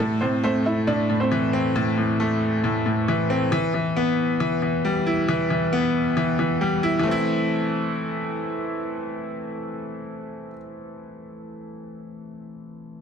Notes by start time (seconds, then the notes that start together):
0.00 A2 A3 A4
0.21 A2 C4 C5
0.43 A3 C4 C5
0.66 E4 E5
0.87 A2 D4 D5
1.10 A2
1.20 C4 C5
1.31 E3
1.53 C4
1.76 A2
1.97 A2
2.20 A3
2.64 A2
2.86 A2
3.08 E3
3.30 C4
3.52 E3
3.74 E3
3.96 B3
4.40 E3
4.62 E3
4.85 G3
5.07 E4
5.28 E3
5.50 E3
5.73 B3
6.17 E3
6.39 E3
6.61 G3
6.83 E4
6.99 E3
7.03 A3 C4
7.11 E4